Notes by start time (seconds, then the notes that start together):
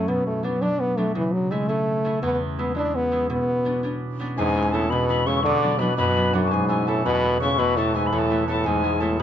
Already playing: F#2 F#3 A3 B3 C#4 E4
0.08 B2 B3
0.26 A3
0.43 F#3 B3 D4
0.61 F#3 B3 D4
0.80 B3
0.97 F#3 A3 B3 D4
1.15 C#3 E3
1.33 F#3
1.51 G#3 A3 C#4 E4
1.68 A3 C#4 E4
2.04 A3 C#4 E4
2.22 E2 B3
2.59 G#3 B3 E4
2.75 G#3 B3 D4 E4
2.95 B3
3.12 G#3 B3 E4
3.30 B2 B3
3.65 B3 C#4 D4
3.83 B3 C#4 D4
4.20 B3 C#4 D4
4.37 E2 G#2 G#4 G#5
4.50 G#4
4.56 G#3 B3 E4
4.62 G#4
4.72 A2 G#3 B3 E4 A4 A5
4.90 B2 B4 B5
5.09 G#3 B3 E4 B5
5.26 C#3 G#3 B3 E4 C#5 C#6
5.43 B2 D3 D5 E5
5.63 F#3 B3 D4
5.79 B2 F#3 B3 D4 B4 B5
5.97 F#2 B2 B4 B5
6.16 F#3 B3 D4
6.34 F#2 F#3 B3 D4 F#4 F#5
6.48 B2 G#5 A5
6.53 G#2 G#4
6.68 A3 B3 E4 G#5
6.87 A2 A3 B3 E4 A4 A5
7.05 E2 B2 B4 B5
7.23 A3 B3 E4
7.40 C#3 A3 B3 E4 C#5 C#6
7.58 E2 B2 B4 B5
7.77 A2 A3 B3 E4 A4 A5
7.94 G#2 A3 B3 E4 G#4 G#5
8.06 B5
8.12 E2 A2 A4 B5
8.19 A5
8.31 A3 B3 E4
8.48 A2 A3 B3 E4 A4 A5
8.59 A4
8.64 E2 G#2 G#4 G#5
8.84 G#3 B3 E4
9.00 A2 G#3 B3 E4 A4 A5
9.19 B4